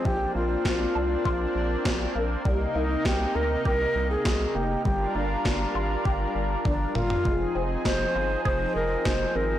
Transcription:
<<
  \new Staff \with { instrumentName = "Alto flute" } { \time 4/4 \key f \dorian \tempo 4 = 100 g'8 f'2. r8 | r8 ees'8 g'8 bes'8 bes'8. aes'8. g'8 | g'8 d'4. r4 d'8 f'8~ | f'8 r8 c''4 c''8 bes'8 c''8 bes'8 | }
  \new Staff \with { instrumentName = "Analog synth pad" } { \time 4/4 \key f \dorian << { d'1 | <c ees'>1 | <g f' bes'>1 | <f ees' aes'>1 | } \\ { <bes c'>1~ | <bes c'>1 | d'1 | c'1 | } >> }
  \new Staff \with { instrumentName = "Synth arpeggio sound" } { \time 4/4 \key f \dorian f8 bes8 c'8 d'8 f'8 r8 c'8 bes8 | g8 bes8 c'8 ees'8 g'8 r8 c'8 bes8 | g8 bes8 d'8 f'8 g'8 r8 d'8 bes8 | aes8 c'8 ees'8 f'8 aes'8 r8 ees'8 c'8 | }
  \new Staff \with { instrumentName = "Analog synth bass" } { \clef bass \time 4/4 \key f \dorian bes,,8 bes,,8 bes,,8 c,8 bes,,8 bes,,8 bes,,8 bes,,8 | c,8 c,8 c,8 d,8 c,8 c,8 c,8 f,,8 | g,,8 g,,8 g,,8 aes,,8 g,,8 g,,8 g,,8 g,,8 | f,,8 f,,8 f,,8 g,,8 f,,8 f,,8 f,,8 aes,,8 | }
  \new DrumStaff \with { instrumentName = "Drums" } \drummode { \time 4/4 bd4 <bd sn>4 bd4 <bd sn>4 | bd4 <bd sn>4 bd4 <bd sn>4 | bd4 <bd sn>4 bd4 <bd tommh>8 toml16 tomfh16 | bd4 <bd sn>4 bd4 <bd sn>4 | }
>>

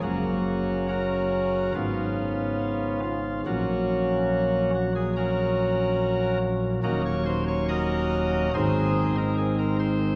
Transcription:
<<
  \new Staff \with { instrumentName = "Pipe organ" } { \time 4/4 \key ges \lydian \tempo 4 = 70 <bes des' ges'>4 <des' ges' bes'>4 <ces' des' f'>4. f'8 | <bes des' ges'>4. ges'16 aes'16 <des' ges' bes'>4. r8 | <ees' ges' bes'>16 des''16 c''16 des''16 <ges' bes' ees''>4 <ees' aes' c''>8. bes'16 aes'16 bes'16 c''8 | }
  \new Staff \with { instrumentName = "Pipe organ" } { \clef bass \time 4/4 \key ges \lydian <ges,, ges, des ges>2 <aes,, aes, des>2 | <bes,, bes, ges>1 | <ees,, ees, ges bes des'>2 <aes,, aes, ees aes c'>2 | }
>>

